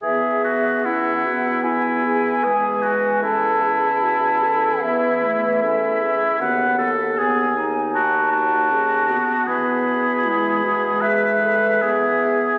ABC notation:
X:1
M:4/4
L:1/8
Q:1/4=76
K:E
V:1 name="Flute"
e2 f2 g4 | a4 e4 | f z g2 a4 | b4 e4 |]
V:2 name="French horn"
G2 E F E G B2 | A G F A B2 A G | F A G z F2 G F- | F2 E F G A G2 |]
V:3 name="Oboe"
G F E2 E2 G F | E6 E2 | B A G z F F3 | G4 B2 G2 |]
V:4 name="Clarinet"
B,2 C B,3 G,2 | C4 B, A, C C | B, z B, D3 C B, | B,2 G, G,3 B,2 |]
V:5 name="Bassoon" clef=bass
E,,8- | E,,8 | D,,6- D,, z | E,,8 |]